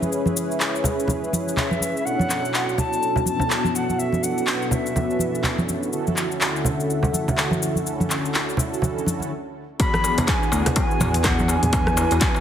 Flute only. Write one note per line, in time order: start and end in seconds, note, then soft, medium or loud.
1.57 2.07 E5 medium
2.05 2.80 F#5 loud
2.78 3.26 A5 loud
3.27 3.77 A5 loud
3.75 4.00 F#5 medium
3.99 4.25 E5 medium
4.23 4.74 F#5 medium
4.73 5.69 E5 medium
9.80 10.29 B5 loud
10.28 10.76 G#5 loud
10.77 11.17 G#5 loud
11.19 11.27 G#5 medium
11.25 11.50 F#5 medium
11.49 12.40 G#5 loud